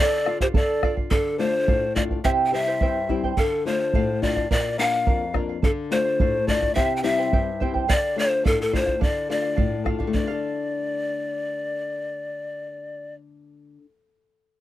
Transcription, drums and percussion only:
0.26 bombo rim
0.41 bombo low
0.54 bombo low
0.83 bombo rim, bombo low
0.97 bombo low
1.11 bombo low
1.68 bombo low
1.96 bombo low
2.11 bombo low
2.25 bombo low
2.81 bombo low
3.09 bombo low
3.24 bombo low
3.37 bombo low
3.94 bombo low
4.23 bombo low
4.37 bombo low
4.51 bombo low
5.07 bombo low
5.34 bombo rim, bombo low
5.63 bombo low
6.20 bombo low
6.48 bombo low
6.62 bombo low
6.77 bombo low
7.33 bombo low
7.61 bombo low
7.75 bombo low
7.90 bombo low
8.46 bombo low
8.74 bombo low
8.87 bombo low
9.02 bombo low
9.58 bombo low
9.86 bombo rim, bombo low
10.00 bombo low
10.14 bombo low

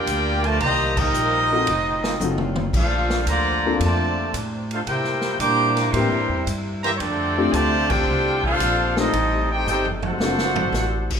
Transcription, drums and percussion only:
0.07 kick, hi-hat pedal, ride
0.44 ride
0.60 kick, ride
0.97 kick, crash
1.14 hi-hat pedal
1.67 kick, ride
2.04 snare
2.20 hi-hat pedal, high tom
2.38 mid tom
2.56 mid tom
2.74 kick, crash
3.10 snare
3.27 kick, hi-hat pedal, ride
3.80 kick, ride
4.34 kick, hi-hat pedal, ride
4.71 ride
4.87 kick, ride
5.04 snare
5.21 snare
5.40 kick, hi-hat pedal, ride
5.76 snare, ride
5.94 kick, ride
6.47 kick, hi-hat pedal, ride
6.84 ride
7.00 kick, ride
7.53 kick, hi-hat pedal, ride
7.90 kick, crash
8.44 kick
8.60 kick, hi-hat pedal, ride
8.97 snare
9.13 kick, ride
9.67 hi-hat pedal
9.85 floor tom
10.03 floor tom
10.20 snare
10.38 snare
10.56 floor tom
10.74 snare, hi-hat pedal
11.10 kick, crash

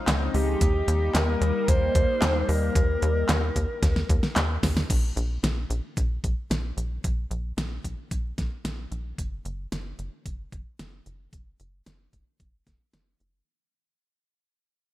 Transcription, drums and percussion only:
0.08 snare, clap, closed hi-hat
0.34 open hi-hat
0.61 kick, closed hi-hat
0.88 closed hi-hat
1.15 snare, clap, closed hi-hat
1.42 closed hi-hat
1.68 kick, closed hi-hat
1.95 kick, closed hi-hat
2.22 snare, clap, closed hi-hat
2.49 open hi-hat
2.75 kick, closed hi-hat
3.02 closed hi-hat
3.29 snare, clap, closed hi-hat
3.56 kick, closed hi-hat
3.83 kick, snare, closed hi-hat
3.96 snare
4.09 kick, closed hi-hat
4.23 snare
4.36 snare, clap, closed hi-hat
4.63 kick, snare, open hi-hat
4.77 snare
4.90 kick, closed hi-hat, crash
5.17 closed hi-hat
5.44 snare, closed hi-hat
5.70 closed hi-hat
5.97 kick, closed hi-hat
6.24 kick, closed hi-hat
6.51 snare, closed hi-hat
6.78 closed hi-hat
7.04 kick, closed hi-hat
7.31 closed hi-hat
7.58 snare, closed hi-hat
7.84 kick, closed hi-hat
8.11 kick, closed hi-hat
8.38 kick, snare, closed hi-hat
8.65 snare, closed hi-hat
8.92 closed hi-hat
9.18 kick, closed hi-hat
9.45 closed hi-hat
9.72 snare, closed hi-hat
9.99 closed hi-hat
10.26 kick, closed hi-hat
10.52 kick, closed hi-hat
10.79 snare, closed hi-hat
11.06 closed hi-hat
11.33 kick, closed hi-hat
11.60 closed hi-hat
11.86 snare, closed hi-hat
12.13 kick, closed hi-hat
12.40 kick, closed hi-hat
12.67 kick, snare, closed hi-hat
12.93 snare, closed hi-hat
13.20 closed hi-hat

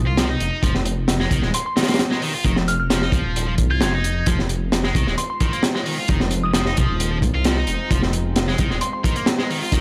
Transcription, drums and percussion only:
0.17 snare, closed hi-hat
0.40 closed hi-hat
0.63 kick, closed hi-hat
0.75 snare
0.85 closed hi-hat
1.08 snare, closed hi-hat
1.20 snare
1.31 kick, closed hi-hat
1.42 snare
1.54 closed hi-hat
1.77 snare, closed hi-hat
1.83 snare, closed hi-hat
1.88 snare, closed hi-hat
1.94 snare, closed hi-hat
1.99 snare, closed hi-hat
2.12 snare
2.22 open hi-hat
2.45 kick, closed hi-hat
2.56 snare
2.68 closed hi-hat
2.90 snare, closed hi-hat
3.02 snare
3.12 kick, closed hi-hat
3.36 closed hi-hat
3.58 kick, closed hi-hat
3.81 snare, closed hi-hat
4.04 closed hi-hat
4.26 kick, closed hi-hat
4.39 snare
4.49 closed hi-hat
4.72 snare, closed hi-hat
4.84 snare
4.95 kick, closed hi-hat
5.07 snare
5.18 closed hi-hat
5.40 kick, closed hi-hat
5.53 closed hi-hat
5.63 snare, closed hi-hat
5.76 snare
5.86 open hi-hat
6.08 kick, closed hi-hat
6.20 snare
6.31 closed hi-hat
6.54 snare, closed hi-hat
6.66 snare
6.77 kick, closed hi-hat
7.00 closed hi-hat
7.22 kick, closed hi-hat
7.44 snare, closed hi-hat
7.67 closed hi-hat
7.91 kick, closed hi-hat
8.02 snare
8.13 closed hi-hat
8.36 snare, closed hi-hat
8.48 snare
8.58 kick, closed hi-hat
8.71 snare
8.81 closed hi-hat
9.04 kick, closed hi-hat
9.16 closed hi-hat
9.26 snare, closed hi-hat
9.39 snare
9.50 open hi-hat
9.72 kick, closed hi-hat

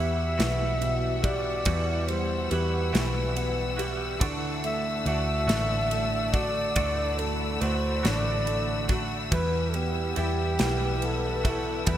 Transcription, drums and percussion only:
0.40 snare, ride
0.82 ride
1.24 kick, ride
1.65 kick, ride
2.08 ride
2.51 ride
2.95 snare, ride
3.36 ride
3.79 ride
4.21 kick, ride
4.64 ride
5.06 ride
5.49 snare, ride
5.91 ride
6.34 kick, ride
6.76 kick, ride
7.19 ride
7.61 ride
8.05 snare, ride
8.47 ride
8.89 kick, ride
9.32 kick, ride
9.74 ride
10.16 ride
10.59 snare, ride
11.02 ride
11.45 kick, ride
11.87 kick, ride

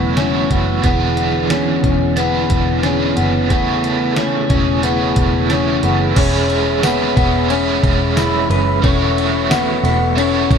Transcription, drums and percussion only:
0.17 snare, closed hi-hat
0.51 kick, closed hi-hat
0.84 kick, closed hi-hat
1.17 closed hi-hat
1.50 snare, closed hi-hat
1.84 kick, closed hi-hat
2.17 closed hi-hat
2.50 kick, closed hi-hat
2.83 snare, closed hi-hat
3.17 closed hi-hat
3.50 kick, closed hi-hat
3.84 closed hi-hat
4.16 snare, closed hi-hat
4.50 kick, closed hi-hat
4.83 closed hi-hat
5.16 kick, closed hi-hat
5.50 snare, closed hi-hat
5.83 closed hi-hat
6.16 kick, crash, ride
6.50 ride
6.83 snare, ride, tambourine
7.17 kick, ride
7.50 ride
7.84 kick, ride
8.17 snare, ride, tambourine
8.51 ride
8.84 kick, ride
9.18 ride
9.51 snare, ride, tambourine
9.85 ride
10.18 ride
10.51 kick, ride

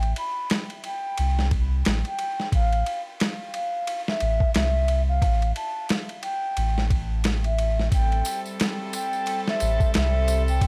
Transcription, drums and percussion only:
0.03 ride
0.16 ride
0.50 snare, ride
0.70 ride
0.84 ride
1.18 ride
1.39 snare
1.51 kick, ride
1.85 snare, ride
2.05 ride
2.19 ride
2.40 snare
2.52 kick, ride
2.73 ride
2.86 ride
3.20 snare, ride
3.54 ride
3.87 ride
4.08 snare
4.20 ride
4.40 kick
4.54 snare, ride
4.88 ride
5.22 kick, ride
5.42 ride
5.56 ride
5.89 snare, ride
6.09 ride
6.23 ride
6.57 ride
6.78 snare
6.90 kick, ride
7.24 snare, ride
7.44 ride
7.58 ride
7.79 snare
7.92 kick, ride, tambourine
8.12 ride
8.25 ride, tambourine
8.46 tambourine
8.60 snare, ride, tambourine
8.93 ride, tambourine
9.13 tambourine
9.26 ride, tambourine
9.48 snare
9.60 ride, tambourine
9.80 kick, tambourine
9.94 snare, ride, tambourine
10.28 ride, tambourine
10.48 tambourine
10.61 kick, ride, tambourine

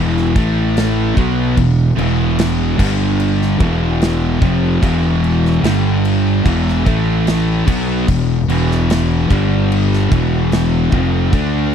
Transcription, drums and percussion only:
0.17 snare
0.36 kick, crash
0.77 snare, crash
1.17 kick, crash
1.57 kick, crash
1.99 crash
2.39 snare, crash
2.79 kick, crash
3.20 crash
3.42 snare
3.60 kick, crash
4.02 snare, crash
4.42 kick, crash
4.83 kick, crash
5.24 crash
5.45 snare
5.64 snare, crash
6.05 crash
6.46 kick, crash
6.68 snare
6.86 kick, crash
7.27 snare, crash
7.68 kick, crash
8.08 kick, crash
8.50 crash
8.71 snare
8.90 snare, crash
9.31 kick, crash
9.72 crash
9.93 snare
10.12 kick, crash
10.52 snare, crash
10.92 kick, crash
11.33 kick, crash

